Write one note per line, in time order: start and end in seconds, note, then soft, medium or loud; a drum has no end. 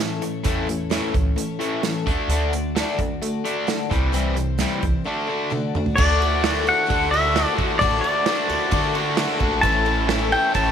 0.00 0.22 A2 medium
0.00 0.22 E3 medium
0.00 0.22 A3 medium
0.00 0.21 C#4 medium
0.00 0.21 E4 medium
0.00 0.20 C#5 medium
0.21 0.42 A2 medium
0.21 0.43 E3 medium
0.21 0.44 A3 soft
0.21 0.44 C#4 soft
0.21 0.44 E4 soft
0.21 0.45 C#5 medium
0.21 closed hi-hat medium
0.44 0.98 E2 medium
0.44 0.68 A2 medium
0.44 0.68 E3 medium
0.44 0.68 A3 medium
0.44 0.68 C#4 medium
0.44 0.66 E4 medium
0.44 0.65 C#5 medium
0.44 kick medium
0.44 closed hi-hat medium
0.67 0.89 A2 medium
0.67 0.89 E3 medium
0.67 0.90 A3 soft
0.67 0.90 C#4 soft
0.67 0.91 E4 soft
0.67 0.90 C#5 medium
0.67 closed hi-hat medium
0.90 1.14 A2 medium
0.90 1.14 E3 medium
0.90 1.14 A3 medium
0.90 1.14 C#4 medium
0.90 1.13 E4 medium
0.90 1.11 C#5 medium
0.90 snare medium
0.90 closed hi-hat medium
1.12 1.32 C#2 medium
1.12 1.34 A2 medium
1.12 1.35 E3 medium
1.12 1.35 A3 soft
1.12 1.36 C#4 soft
1.12 1.37 E4 soft
1.12 1.36 C#5 soft
1.12 kick medium
1.12 closed hi-hat medium
1.36 1.58 A2 medium
1.36 1.58 E3 medium
1.36 1.60 A3 medium
1.36 1.60 C#4 medium
1.36 1.60 E4 medium
1.36 1.59 C#5 medium
1.36 closed hi-hat medium
1.59 1.81 A2 medium
1.59 1.82 E3 medium
1.59 1.84 C#4 soft
1.59 1.84 E4 soft
1.59 1.83 C#5 soft
1.59 closed hi-hat medium
1.64 1.84 A3 soft
1.83 2.07 A2 medium
1.83 2.07 E3 medium
1.83 2.07 A3 medium
1.83 2.07 C#4 medium
1.83 2.08 E4 medium
1.83 2.06 C#5 medium
1.83 snare medium
1.83 closed hi-hat medium
2.06 2.16 D2 medium
2.06 2.28 D3 medium
2.06 2.29 A3 medium
2.06 2.31 F#4 soft
2.06 2.30 D5 medium
2.06 kick medium
2.06 closed hi-hat medium
2.10 2.29 D4 soft
2.28 2.82 D2 medium
2.28 2.53 D3 medium
2.28 2.53 A3 medium
2.28 2.53 D4 medium
2.28 2.52 D5 medium
2.28 closed hi-hat medium
2.32 2.54 F#4 medium
2.53 2.74 D3 medium
2.53 2.74 A3 medium
2.53 2.77 D4 soft
2.53 2.77 F#4 soft
2.53 2.76 D5 medium
2.53 closed hi-hat medium
2.76 3.00 D3 medium
2.76 3.00 A3 medium
2.76 3.00 D4 medium
2.76 3.00 F#4 medium
2.76 2.98 D5 medium
2.76 snare loud
2.76 closed hi-hat medium
2.98 3.17 D2 medium
2.98 3.20 D3 medium
2.98 3.20 A3 medium
2.98 3.23 D4 soft
2.98 3.23 F#4 soft
2.98 3.22 D5 soft
2.98 kick medium
2.98 closed hi-hat soft
3.22 3.43 D3 medium
3.22 3.45 A3 medium
3.22 3.46 D4 medium
3.22 3.46 F#4 medium
3.22 closed hi-hat medium
3.26 3.44 D5 medium
3.44 3.66 D3 medium
3.44 3.67 A3 medium
3.44 3.67 F#4 soft
3.44 3.68 D5 soft
3.44 closed hi-hat soft
3.48 3.67 D4 soft
3.67 3.91 D3 medium
3.67 3.91 A3 medium
3.67 3.91 D4 medium
3.67 3.91 F#4 medium
3.67 3.89 D5 medium
3.67 snare medium
3.67 closed hi-hat medium
3.89 4.62 C2 medium
3.89 4.11 C3 medium
3.89 4.12 E3 medium
3.89 4.12 G3 soft
3.89 4.13 C4 soft
3.89 4.14 E4 medium
3.89 4.13 C5 soft
3.89 kick medium
3.89 closed hi-hat medium
4.12 4.36 C3 medium
4.12 4.37 E3 medium
4.12 4.37 G3 medium
4.12 4.37 C4 medium
4.12 4.36 E4 medium
4.12 4.34 C5 medium
4.12 closed hi-hat medium
4.35 4.58 C3 medium
4.35 4.58 E3 medium
4.35 4.57 G3 soft
4.35 4.59 C4 soft
4.35 4.59 E4 medium
4.35 4.59 C5 medium
4.35 closed hi-hat medium
4.58 4.82 C3 medium
4.58 4.83 E3 medium
4.58 4.82 G3 medium
4.58 4.82 C4 medium
4.58 4.82 E4 medium
4.58 4.80 C5 medium
4.58 snare medium
4.58 closed hi-hat medium
4.82 4.92 C2 medium
4.82 5.04 C3 medium
4.82 5.04 E3 medium
4.82 5.04 G3 soft
4.82 5.06 C4 soft
4.82 5.06 E4 soft
4.82 5.05 C5 soft
4.82 kick medium
4.82 closed hi-hat medium
5.04 5.27 D3 medium
5.04 5.28 A3 medium
5.04 5.29 D4 medium
5.04 5.28 F#4 medium
5.04 5.26 D5 medium
5.27 5.50 D3 medium
5.27 5.51 A3 medium
5.27 5.51 D4 soft
5.27 5.51 F#4 soft
5.27 5.51 D5 soft
5.50 5.74 D3 medium
5.50 5.74 A3 medium
5.50 5.75 D4 medium
5.50 5.75 F#4 medium
5.50 5.73 D5 medium
5.50 high tom soft
5.75 5.96 D3 medium
5.75 5.97 A3 medium
5.75 5.97 D4 soft
5.75 5.98 F#4 soft
5.75 5.98 D5 medium
5.75 mid tom medium
5.86 floor tom medium
5.96 6.69 D2 medium
5.96 6.20 D3 medium
5.96 6.20 A3 medium
5.96 6.20 D4 medium
5.96 6.19 F#4 medium
5.96 6.18 A4 medium
5.96 6.67 D5 medium
5.96 kick loud
5.96 crash loud
6.19 6.42 D4 soft
6.19 6.43 F#4 soft
6.19 6.43 A4 soft
6.19 ride medium
6.42 6.87 D3 medium
6.42 6.66 A3 medium
6.42 6.66 D4 medium
6.42 6.65 F#4 medium
6.42 6.63 A4 medium
6.42 snare loud
6.42 ride medium
6.64 6.86 D4 soft
6.64 6.87 F#4 soft
6.64 6.88 A4 medium
6.64 ride medium
6.69 7.11 F#5 loud
6.86 7.11 D3 medium
6.86 7.11 A3 medium
6.86 7.11 D4 medium
6.86 7.11 F#4 medium
6.86 7.09 A4 medium
6.86 kick medium
6.86 ride loud
6.90 7.43 D2 medium
7.11 7.34 D4 soft
7.11 7.35 F#4 soft
7.11 7.34 A4 soft
7.11 7.54 E5 medium
7.11 ride medium
7.15 7.35 A3 medium
7.34 7.79 D3 medium
7.34 7.57 A3 medium
7.34 7.58 D4 medium
7.34 7.58 F#4 medium
7.34 7.56 A4 medium
7.34 snare loud
7.34 ride medium
7.57 7.76 D3 medium
7.57 7.81 A3 medium
7.57 7.80 D4 medium
7.57 7.80 F#4 medium
7.57 7.80 A4 medium
7.57 kick medium
7.57 ride medium
7.79 7.99 A1 loud
7.79 8.03 D3 medium
7.79 8.03 A3 medium
7.79 8.03 D4 medium
7.79 8.03 F#4 loud
7.79 8.01 A4 loud
7.79 8.00 D5 loud
7.79 kick loud
7.79 ride loud
8.01 8.26 F#4 soft
8.01 8.25 A4 medium
8.01 8.89 D5 loud
8.01 ride medium
8.05 8.26 D4 soft
8.26 8.70 D3 medium
8.26 8.49 A3 medium
8.26 8.50 D4 medium
8.26 8.50 F#4 medium
8.26 8.48 A4 medium
8.26 snare loud
8.26 ride loud
8.48 8.57 D2 medium
8.48 8.71 F#4 soft
8.48 8.72 A4 medium
8.48 ride medium
8.53 8.71 D4 soft
8.71 8.94 D3 medium
8.71 9.24 D3 loud
8.71 8.94 A3 loud
8.71 8.95 D4 loud
8.71 8.95 F#4 medium
8.71 8.93 A4 loud
8.71 kick loud
8.71 ride loud
8.94 9.17 A3 medium
8.94 9.16 D4 soft
8.94 9.17 F#4 medium
8.94 9.17 A4 medium
8.94 ride medium
9.15 9.61 D3 medium
9.15 9.39 A3 medium
9.15 9.40 D4 medium
9.15 9.40 F#4 medium
9.15 snare loud
9.15 ride loud
9.20 9.37 A4 medium
9.39 9.58 A#1 loud
9.39 9.63 F#4 medium
9.39 9.62 A4 medium
9.39 kick medium
9.39 ride medium
9.43 9.63 A3 medium
9.43 9.64 D4 medium
9.61 10.33 A1 medium
9.61 9.85 A2 medium
9.61 9.86 E3 medium
9.61 9.86 A3 medium
9.61 9.87 C#4 medium
9.61 9.86 E4 loud
9.61 9.84 A4 loud
9.61 10.26 A5 loud
9.61 kick loud
9.61 ride loud
9.85 10.08 A3 soft
9.85 10.09 C#4 soft
9.85 10.09 E4 soft
9.85 10.08 A4 medium
9.85 ride medium
10.07 10.54 E3 medium
10.07 10.31 A3 medium
10.07 10.32 C#4 medium
10.07 10.31 E4 medium
10.07 snare loud
10.07 ride medium
10.13 10.30 A4 medium
10.31 10.55 C#4 soft
10.31 10.54 A4 soft
10.31 10.55 G5 loud
10.31 ride medium
10.54 10.72 A1 loud
10.54 10.72 A2 medium
10.54 10.72 E3 medium
10.54 10.72 A3 medium
10.54 10.72 C#4 medium
10.54 10.72 E4 medium
10.54 10.72 A4 medium
10.54 10.72 A5 medium
10.54 kick medium
10.54 ride loud